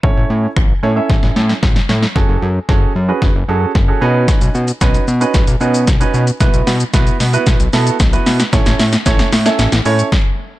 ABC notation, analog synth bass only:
X:1
M:4/4
L:1/16
Q:1/4=113
K:F#dor
V:1 name="Analog synth bass" clef=bass
A,,, A,,, A,,2 A,,,2 A,,2 A,,, A,,, A,,2 A,,,2 A,,2 | F,,, F,,, F,,2 F,,,2 F,,2 F,,, F,,, F,,2 F,,,2 B,,2- | B,, B,,, B,,2 B,,,2 B,,2 B,,, B,,, B,,2 B,,,2 B,,2 | B,,, B,,, B,,2 B,,,2 B,,2 B,,, B,,, B,,2 B,,,2 B,,2 |
A,,, A,,, A,,2 A,,,2 A,,2 A,,, A,,, A,,2 z4 |]